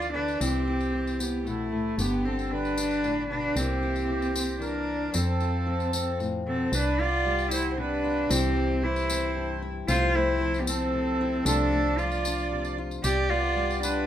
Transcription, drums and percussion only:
0.02 tambourine soft
0.28 tambourine soft
0.41 tambourine medium
0.81 tambourine soft
1.07 tambourine soft
1.20 tambourine medium
1.47 tambourine soft
1.99 tambourine medium
2.39 tambourine soft
2.65 tambourine soft
2.78 tambourine medium
2.91 tambourine soft
3.04 tambourine soft
3.57 tambourine loud
3.96 tambourine soft
4.22 tambourine soft
4.36 tambourine loud
4.49 tambourine soft
4.62 tambourine soft
5.14 tambourine loud
5.40 tambourine soft
5.80 tambourine soft
5.93 tambourine loud
6.20 tambourine soft
6.73 tambourine medium
7.39 tambourine soft
7.51 tambourine loud
8.31 tambourine loud
8.96 tambourine soft
9.10 tambourine medium
9.88 tambourine medium
10.54 tambourine soft
10.67 tambourine loud
11.46 tambourine loud
11.99 tambourine soft
12.12 tambourine soft
12.25 tambourine medium
12.38 tambourine soft
12.65 tambourine soft
12.91 tambourine soft
13.04 tambourine loud
13.71 tambourine soft
13.83 tambourine loud

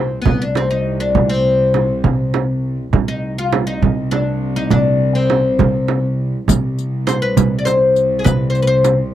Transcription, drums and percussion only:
0.25 frame drum medium
0.55 frame drum medium
1.15 frame drum medium
1.74 frame drum medium
2.04 frame drum medium
2.34 frame drum medium
2.93 frame drum medium
3.53 frame drum medium
3.83 frame drum medium
4.12 frame drum medium
4.70 frame drum medium
5.30 frame drum medium
5.59 frame drum medium
5.88 frame drum medium
6.48 riq medium
6.48 frame drum medium
6.79 riq soft
7.07 riq soft
7.07 frame drum medium
7.37 riq medium
7.37 frame drum medium
7.66 riq soft
7.66 frame drum medium
7.96 riq soft
8.25 riq soft
8.25 frame drum medium
8.55 riq soft
8.84 riq soft
8.84 frame drum medium

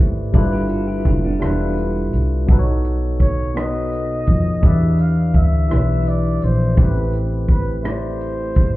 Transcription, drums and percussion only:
0.34 kick medium
0.34 closed hi-hat medium
0.69 closed hi-hat soft
1.05 kick medium
1.05 closed hi-hat soft
1.41 cross-stick medium
1.41 closed hi-hat medium
1.78 closed hi-hat soft
2.13 closed hi-hat soft
2.49 kick medium
2.49 closed hi-hat soft
2.85 closed hi-hat soft
3.20 kick medium
3.20 closed hi-hat soft
3.56 cross-stick loud
3.56 closed hi-hat medium
3.92 closed hi-hat soft
4.27 kick medium
4.27 closed hi-hat soft
4.63 kick loud
4.63 closed hi-hat medium
4.98 closed hi-hat soft
5.34 kick medium
5.34 closed hi-hat soft
5.71 cross-stick medium
5.71 closed hi-hat medium
6.06 closed hi-hat soft
6.42 closed hi-hat soft
6.77 kick loud
6.77 closed hi-hat medium
7.13 closed hi-hat soft
7.49 kick medium
7.49 closed hi-hat soft
7.85 cross-stick loud
7.85 closed hi-hat medium
8.21 closed hi-hat soft
8.55 kick medium
8.55 closed hi-hat medium

